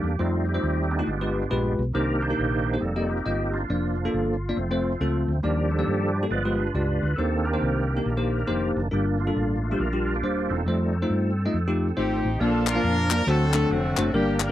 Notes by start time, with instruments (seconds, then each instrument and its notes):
Already playing: tonewheel organ A#3 D4 G4
0.03 fingered electric bass E2
0.19 fingered electric bass F2, tonewheel organ G3 A3 C4 D#4 F4, tine electric piano A3 D#4 F4 C5
0.48 tonewheel organ C4 D#4 G4
0.54 tine electric piano A3 D#4 F4 C5
0.63 fingered electric bass D#2
0.91 tonewheel organ B3 D4 G4
0.99 tine electric piano A3 D#4 F4 G4
1.06 fingered electric bass G1, tine electric piano G2, tonewheel organ G#3 B3 F4
1.21 tine electric piano G#3 F4 G4 B4
1.51 fingered electric bass A#1, tine electric piano G#3 F4 G4 B4
1.79 fingered electric bass B1
1.93 fingered electric bass C2, tine electric piano C3 A#3 D#4 G4 C5, tonewheel organ D#3 A#3 D4 D#4 G4 A#4
2.22 tonewheel organ D#4 G4 C5
2.30 tine electric piano A#3 D#4 G4 A#4
2.39 fingered electric bass A#1
2.74 tine electric piano A#3 D#4 G4 C5, tonewheel organ G#4
2.80 fingered electric bass F1, tonewheel organ G3 A#3 C4 D#4 A4
2.96 tine electric piano A#3 F4 G4 D#5
3.09 tonewheel organ A#3 D#4 G4
3.26 fingered electric bass G1, tine electric piano A#3 F4 G4 D#5
3.53 tonewheel organ A#3 D4 F4
3.68 fingered electric bass F1, tonewheel organ F3 A#3 D4, tine electric piano A#3 D4 F4 D5
4.05 tine electric piano A#3 D4 F4 A4
4.14 fingered electric bass G1
4.49 tine electric piano A#3 D4 F4 D5
4.56 fingered electric bass F1, tonewheel organ F3 A3 C4
4.71 tine electric piano A3 C4 F4 C5
5.01 fingered electric bass C#2, tine electric piano A3 C4 F4 A4
5.28 fingered electric bass D2
5.43 fingered electric bass D#2, tine electric piano D#3 A#3 D#4 G4 D5, tonewheel organ F3 G3 D4 G4 A#4
5.71 tonewheel organ D4 A4
5.79 tine electric piano A#3 D#4 G4 D5
5.87 fingered electric bass G2
6.23 tine electric piano A#3 D#4 G4 A4
6.30 fingered electric bass G1, tine electric piano G2, tonewheel organ F3 G#3 B3 F4 B4 D5
6.45 tine electric piano G#3 F4 G4 B4
6.57 tonewheel organ D4 F4 B4
6.74 fingered electric bass C#2, tine electric piano G#3 F4 G4 D5
7.03 fingered electric bass D2
7.16 fingered electric bass D#2, tonewheel organ D#3 A#3 C4 D4 A4, tine electric piano D#3 A#3 D#4 G4 C5
7.45 tonewheel organ G4 A#4
7.53 tine electric piano A#3 D#4 G4 C5
7.62 fingered electric bass C2
7.87 tonewheel organ G4 A#4
7.96 tine electric piano A#3 D#4 G4 A#4
8.06 fingered electric bass A#1
8.17 tine electric piano A#3 D#4 G4 C5
8.47 fingered electric bass F1, tine electric piano A#3 D#4 G4 C5
8.76 fingered electric bass F#1
8.91 fingered electric bass G1, tine electric piano G2 G3 D4 F4 A#4, tonewheel organ A#3 D4 G4
9.19 tonewheel organ A#3 D4 F4
9.27 tine electric piano G3 D4 F4 A4
9.36 fingered electric bass A1
9.62 tonewheel organ A3 A#3 F4
9.71 tine electric piano G3 D4 F4 G4, tonewheel organ C5
9.80 fingered electric bass A#1, tonewheel organ D4 F4 A#4
9.93 tine electric piano G3 D4 F4 G4
10.16 tonewheel organ A#3 D4 G4
10.23 fingered electric bass D#1, tine electric piano G3 D4 F4 C5
10.49 fingered electric bass E1, tonewheel organ C4 D#4 A4
10.65 fingered electric bass F2, tonewheel organ G3 A3 D#4, tine electric piano A3 D#4 F4 C5
11.02 tine electric piano A3 D#4 F4 C5
11.10 fingered electric bass G2
11.46 tine electric piano A3 D#4 F4 D#5
11.54 fingered electric bass F2
11.68 tine electric piano A3 D#4 F4 G4
11.97 fingered electric bass G#1, tine electric piano A3 D#4 F4 C5, horn section C4 D#4 G4
12.25 fingered electric bass A1
12.40 fingered electric bass A#1, tine electric piano A#2 A#3 D4 F4 D5, tonewheel organ F3 A#3 D4 A#4, horn section D4 F4 A4
12.67 horn section D4 F4 A#4, clap
12.75 tine electric piano A#3 D4 F4 F5
12.84 fingered electric bass F2
13.10 tine electric piano A#3 D4 F4 D5, clap
13.26 fingered electric bass D2, tine electric piano D3 A3 D4 F#4 C5, tonewheel organ F#3 C4 D4 G#4, horn section C4 F#4 A4
13.32 tonewheel organ A4
13.53 tine electric piano A3 D4 F#4 A4, clap
13.70 fingered electric bass F1, horn section A3 C4 F#4
13.97 fingered electric bass F#1, tine electric piano A3 D4 F#4 C5, clap
14.13 fingered electric bass G1, tine electric piano G2 G3 A#3 D4 A#4, tonewheel organ G3 A#3 D4 A#4, horn section A#3 D4 G4
14.40 horn section D4 G4 A#4, clap